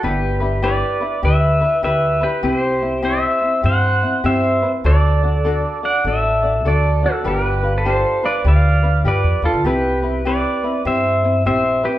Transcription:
0.03 upright bass G1, ukulele D4 E4 G4 B4, pedal steel guitar G4 B4
0.40 ukulele D4 E4 B4
0.62 ukulele D4 E4 G4 B4, pedal steel guitar B4 D5
1.00 ukulele D4 E4 B4
1.23 upright bass D2, ukulele D4 E4 G4 B4, pedal steel guitar B4 E5
1.61 ukulele D4 E4 B4
1.83 upright bass D2, ukulele D4 E4 G4 B4, pedal steel guitar B4 E5
2.21 ukulele D4 E4 B4, pedal steel guitar G4 B4
2.43 upright bass C2, ukulele C4 E4 G4, pedal steel guitar G4 B4
2.56 pedal steel guitar C5
2.82 ukulele C4 E4
3.02 ukulele C4 E4 G4, pedal steel guitar C5 E5
3.42 ukulele C4 E4
3.63 upright bass G2, ukulele C4 E4 G4, pedal steel guitar C5 F#5
4.03 ukulele C4 E4
4.24 upright bass G2, ukulele C4 E4 G4, pedal steel guitar C5 E5
4.62 ukulele C4 E4 B4
4.84 upright bass D2, ukulele D4 F#4 A4 D5, pedal steel guitar A4 D5
5.23 ukulele D4 F#4 D5
5.45 ukulele D4 F#4 A4 D5
5.83 ukulele D4 F#4 D5, pedal steel guitar D5 F#5
6.05 upright bass A1, ukulele D4 F#4 A4 D5, pedal steel guitar A4 E5
6.43 ukulele D4 F#4 D5
6.65 upright bass D2, ukulele D4 F#4 A4 D5, pedal steel guitar A4 D5
7.03 ukulele D4 F#4 D5, pedal steel guitar F#4 A4
7.24 upright bass G1, ukulele D4 F4 G4 B4, pedal steel guitar G4 A#4
7.45 pedal steel guitar B4
7.63 ukulele D4 F4 B4
7.78 pedal steel guitar A4 B4
7.85 ukulele D4 F4 G4, pedal steel guitar C5
8.23 ukulele D4 F4 B4, pedal steel guitar B4 D5
8.45 upright bass D2, ukulele D4 F4 G4 B4, pedal steel guitar D5 F5
8.83 ukulele D4 F4 B4
9.04 upright bass G2, ukulele D4 F4 G4 B4, pedal steel guitar B4 D5
9.24 upright bass F2
9.42 upright bass E2, ukulele D4 F4 B4, pedal steel guitar F4 A4
9.53 upright bass D2
9.64 upright bass C2, ukulele C4 E4 G4 B4, pedal steel guitar G4 B4
10.03 ukulele C4 E4 B4
10.25 ukulele C4 E4 G4 B4, pedal steel guitar B4 D5
10.63 ukulele C4 E4 B4
10.85 upright bass G2, ukulele C4 E4 G4, pedal steel guitar C5 E5
11.24 ukulele C4 E4
11.45 upright bass A#1, ukulele C4 E4 G4, pedal steel guitar C5 E5
11.83 ukulele C4 E4 B4, pedal steel guitar G4 B4

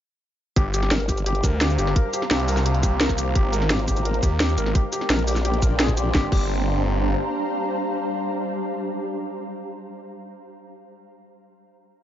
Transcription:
0.56 detuned saw bass G1, synth drone G3 D4 G4, felt piano G4, ambient pad C5, kick, closed hi-hat
0.74 felt piano G4, closed hi-hat, cabasa
0.83 snare
0.87 ambient pad F5
0.91 wobble bass G1, felt piano A#4, snare, closed hi-hat
1.00 closed hi-hat
1.05 felt piano G4, ambient pad A#5, kick, closed hi-hat, cabasa
1.18 closed hi-hat, cabasa
1.26 felt piano G4, closed hi-hat
1.35 closed hi-hat
1.44 detuned saw bass D2, felt piano A#4, kick, closed hi-hat, cabasa
1.61 felt piano G4, snare, closed hi-hat
1.70 cabasa
1.78 detuned saw bass G1, felt piano G4, closed hi-hat, cabasa
1.87 snare
1.96 synth drone D#3 A#3 F4, felt piano A#4, kick, closed hi-hat
2.13 felt piano G4, closed hi-hat, cabasa
2.22 snare
2.31 detuned saw bass C2, felt piano G4, snare, closed hi-hat
2.40 closed hi-hat
2.48 felt piano A#4, open hi-hat, cabasa
2.57 snare, closed hi-hat, cabasa
2.66 felt piano G4, closed hi-hat
2.74 closed hi-hat
2.83 felt piano G4, kick, closed hi-hat, cabasa
3.00 felt piano A#4, snare, closed hi-hat
3.09 kick, snare, cabasa
3.18 felt piano G4, closed hi-hat, cabasa
3.35 detuned saw bass G#1, synth drone G#3 D#4 A#4, felt piano G4, kick, closed hi-hat
3.53 felt piano A#4, closed hi-hat, cabasa
3.62 snare
3.70 wobble bass G#1, felt piano G4, snare, closed hi-hat
3.79 closed hi-hat
3.88 felt piano G4, kick, closed hi-hat, cabasa
3.97 closed hi-hat, cabasa
4.05 felt piano A#4, closed hi-hat
4.14 closed hi-hat
4.23 detuned saw bass D#2, felt piano G4, kick, closed hi-hat, cabasa
4.40 felt piano G4, snare, closed hi-hat
4.49 cabasa
4.57 detuned saw bass G#1, felt piano A#4, closed hi-hat, cabasa
4.66 snare
4.75 synth drone A#3 C4 D4, felt piano G4, ambient pad D5, kick, closed hi-hat
4.81 ambient pad G5
4.92 felt piano G4, closed hi-hat, cabasa
5.01 snare
5.10 wobble bass A#1, felt piano A#4, ambient pad C6, snare, closed hi-hat
5.19 closed hi-hat
5.27 felt piano G4, open hi-hat, cabasa
5.36 snare, closed hi-hat, cabasa
5.45 felt piano G4, closed hi-hat
5.54 closed hi-hat
5.62 felt piano A#4, kick, closed hi-hat, cabasa
5.80 felt piano G#4, snare, closed hi-hat
5.88 kick, snare, cabasa
5.97 felt piano G4, closed hi-hat, cabasa
6.15 detuned saw bass G1, synth drone G3 D4 G4, felt piano G4, ambient pad C5, kick, snare
6.20 ambient pad F5
6.25 ambient pad A#5
6.32 detuned saw bass G1, felt piano G4, kick, crash

